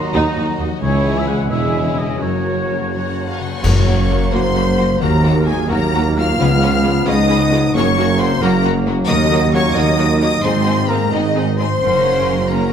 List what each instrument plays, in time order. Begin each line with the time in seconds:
Already playing: trombone section D#3 F#3, harp D#3 D#4 F#4 D#5, french horn section A#3 D#4, violin section F#4 D#5, flute section A#5, oboe A#5
0.03 harp D#6
0.14 double bass section D#2, tuba D#2, cello section D#2, viola section D#4, harp F#5, oboe A#5, flute section A#5
0.26 harp D#5
0.36 double bass section D#2, tuba D#2, cello section D#2, viola section D#4, harp D#4
0.48 harp F#3
0.58 double bass section D#2, tuba D#2, cello section D#2, harp D#4, viola section D#4
0.70 harp F#3
0.80 tuba C#2, double bass section C#2, cello section C#2, harp C#3, trombone section E3 G#3, french horn section G#3 C#4, viola section E4, violin section G#4 C#5, flute section C#5, oboe C#5
0.93 harp G#3
1.05 harp G#4
1.15 flute section E5, harp E5, oboe E5
1.27 harp G#4, oboe F#5, flute section F#5
1.39 harp G#5
1.50 tuba E1, double bass section E1, cello section E2, viola section E4, violin section G#4 C#5, oboe E5, flute section E5, harp E6
1.74 harp G#3
1.85 harp C#4
1.98 harp G#3, oboe D#5, flute section D#5
2.09 harp C#4
2.20 double bass section F#1, tuba F#1, harp F#2, cello section F#2, trombone section C#3 F#3, french horn section A#3, viola section F#4, violin section A#4 C#5, oboe C#5, flute section C#5
2.31 harp A#3
2.44 harp F#4
2.67 harp A#4
2.78 harp F#5
2.92 french horn section F#3, clarinet F#4, flute section F#4, violin section C#5 F#5
3.02 harp A#4
3.15 harp F#4
3.28 harp A#3, violin section F5
3.39 harp C#3, french horn section C#4, clarinet C#5, flute section C#5, violin section F#5 C#6
3.52 harp A#3
3.62 double bass section F#1, tuba F#1, harp F#2, cello section F#2, trombone section F#3 A#3, viola section F#3 A#3, violin section F#4 A#4, concert bass drum, crash
3.74 harp C#3
3.86 viola section F#3 A#3, harp A#3, violin section F#4 A#4
3.97 harp F#4
4.09 viola section F#3 A#3, violin section F#4 A#4, harp A#4
4.20 harp F#4
4.31 double bass section F#1, tuba F#1, cello section F#2, viola section F#3 A#3, violin section F#4 A#4 C6, flute section C5, french horn section C5, clarinet C5, harp F#5
4.43 harp A#5
4.55 viola section F#3 A#3, violin section F#4 A#4, harp F#5
4.65 harp A#4
4.77 viola section F#3 A#3, harp F#4, violin section F#4 A#4
4.89 harp A#3
5.00 double bass section D#2, tuba D#2, cello section D#2, harp D#3, trombone section F#3 A#3, viola section F#3 A#3, french horn section A#3, violin section F#4 A#4 A#5, flute section A#4, clarinet A#4
5.12 harp D#4
5.23 viola section F#3 A#3, harp A#3, violin section F#4 A#4
5.36 harp F#4
5.45 viola section F#3 A#3, french horn section G#3, violin section F#4 A#4 G#5, flute section G#4, clarinet G#4, harp A#4
5.58 harp F#4
5.67 double bass section D#2, tuba D#2, cello section D#2, trombone section F#3 A#3, french horn section A#3, violin section F#4 A#4, clarinet A#4, flute section A#4, harp F#5
5.71 viola section F#3 A#3, violin section A#5
5.93 viola section F#3 A#3, violin section F#4 A#4, harp F#5
6.04 harp A#4
6.16 viola section F#3 A#3, french horn section F4, harp F#4, violin section F#4 A#4 F6, flute section F5, clarinet F5
6.29 harp A#3
6.38 tuba C#2, double bass section C#2, cello section C#2, harp C#3, trombone section F3 B3, viola section G#3 C#4, violin section F4 B4
6.51 harp G#3
6.61 viola section G#3 C#4, harp C#4, violin section F4 B4
6.74 harp G#4
6.84 viola section G#3 C#4, violin section F4 B4, harp B4
7.06 tuba C#2, double bass section C#2, cello section C#2, viola section G#3 C#4, french horn section D#4, violin section F4 B4 D#6, flute section D#5, clarinet D#5, harp G#5
7.18 harp B5
7.28 viola section G#3 C#4, violin section F4 B4, harp G#5
7.42 harp C#5
7.50 viola section G#3 C#4, harp G#4, violin section B4
7.54 violin section F4
7.64 harp C#4
7.74 tuba F#1, double bass section F#1, cello section F#2, harp F#2, trombone section F#3 A#3, viola section F#3 A#3, french horn section C#4, violin section F#4 A#4 C#6, flute section C#5, clarinet C#5
7.86 harp C#3
7.96 viola section F#3 A#3, harp A#3, violin section F#4 A#4
8.09 harp F#4
8.17 viola section F#3 A#3, violin section F#4 A#4 C6, harp A#4, clarinet C5, flute section C5
8.22 french horn section C4
8.30 harp F#4
8.40 tuba F#1, double bass section F#1, cello section F#2, trombone section F#3 A#3, viola section F#3 A#3, clarinet A#4, flute section A#4, violin section A#4 A#5, harp F#5
8.44 french horn section A#3, violin section F#4
8.63 viola section F#3 A#3, violin section F#4 A#4, harp F#5
8.75 harp A#4
8.86 viola section F#3 A#3, violin section F#4 A#4
8.98 harp A#3
9.08 tuba D#2, cello section D#2, double bass section D#2, harp D#3, viola section F#3 A#3, trombone section F#3 A#3, french horn section D#4, violin section F#4 A#4 D#6, clarinet D#5, flute section D#5
9.21 harp D#4
9.31 viola section F#3 A#3, harp A#3, violin section F#4 A#4
9.43 harp F#4
9.53 viola section F#3 A#3, french horn section C#4, violin section F#4 A#4 C#6, harp A#4, flute section C#5, clarinet C#5
9.65 harp F#4
9.74 tuba D#2, double bass section D#2, cello section D#2, viola section F#3 A#3, french horn section D#4, violin section F#4 A#4 D#6, clarinet D#5, flute section D#5, harp F#5
9.88 harp A#5
9.97 viola section F#3 A#3, violin section F#4 A#4, harp F#5
10.10 harp A#4
10.19 viola section A#3, french horn section D#4, violin section F#4 A#4 D#6, harp F#4, flute section D#5, clarinet D#5
10.23 viola section F#3
10.42 tuba G#1, double bass section G#1, cello section G#2, harp G#2, trombone section D#3 G#3, viola section G#3 C4, french horn section C4, violin section D#4 G#4 C6, clarinet C5, flute section C5
10.55 harp D#3
10.66 viola section G#3 C4, harp C4, violin section D#4 G#4
10.78 harp D#4
10.88 viola section G#3 C4, french horn section A#3, violin section D#4 G#4 A#5, harp G#4, flute section A#4, clarinet A#4
11.00 harp C5
11.11 double bass section G#1, tuba G#1, cello section G#2, french horn section D#3, viola section G#3 C4, flute section D#4, clarinet D#4, harp D#5, violin section D#5
11.15 violin section D#4 G#4
11.24 harp G#5
11.35 viola section G#3 C4, violin section D#4 G#4, harp D#5
11.47 harp C5
11.58 viola section G#3 C4, harp D#4, violin section D#4 G#4 C6, french horn section C5, flute section C5, clarinet C5
11.70 harp C4
11.80 tuba F#1, double bass section F#1, cello section F#2, harp F#2, trombone section C#3 A#3, viola section A#3 C#4, violin section F#4 A#4
11.93 harp C#3
12.04 harp C#4
12.27 harp A#4
12.38 harp C#5
12.50 viola section A#3 C#4, french horn section A#3, violin section F#4 A#4 A#5, clarinet A#4, flute section A#4, harp F#5
12.61 harp A#5